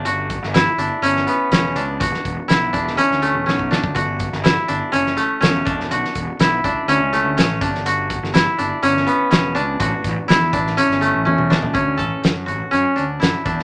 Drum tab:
HH |x-x-x-x-x-x-x-x-|x-x-x-x-x-x-----|x-x-x-x-x-x-x-x-|x-x-x-x-x-x-x-x-|
SD |---oo----o--o---|-o--o--o-o--o-o-|---oo----o--o--o|-o--o-------o--o|
T1 |----------------|----------------|----------------|----------------|
T2 |----------------|----------------|----------------|----------------|
FT |----------------|----------------|----------------|----------------|
BD |--o-------------|o-o---o------o-o|o-o-----------o-|--o---o-------o-|

HH |x-x-x-x-x-x-x-x-|x-x-x-x-x-x-----|x-x-x-x-x-x-x-x-|
SD |---oo----o--o---|----o--o-o----o-|----o-------o--o|
T1 |----------------|------------o---|----------------|
T2 |----------------|-------------o--|----------------|
FT |----------------|---------------o|----------------|
BD |--o-------------|o-o---o---------|o-o-----------o-|